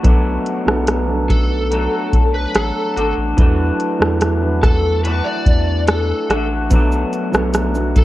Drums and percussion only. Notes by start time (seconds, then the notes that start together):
0.04 kick, closed hi-hat
0.46 closed hi-hat
0.68 cross-stick
0.87 cross-stick, closed hi-hat
1.30 kick, closed hi-hat
1.72 closed hi-hat
2.13 kick, closed hi-hat
2.55 cross-stick, closed hi-hat
2.97 closed hi-hat
3.38 kick, closed hi-hat
3.80 closed hi-hat
4.02 cross-stick
4.21 cross-stick, closed hi-hat
4.63 kick, cross-stick, closed hi-hat
5.05 closed hi-hat
5.46 kick, closed hi-hat
5.88 cross-stick, closed hi-hat
6.30 cross-stick, closed hi-hat
6.71 kick, closed hi-hat, shaker
6.92 shaker
7.13 closed hi-hat, shaker
7.34 cross-stick, shaker
7.54 cross-stick, closed hi-hat, shaker
7.75 shaker
7.96 kick, closed hi-hat, shaker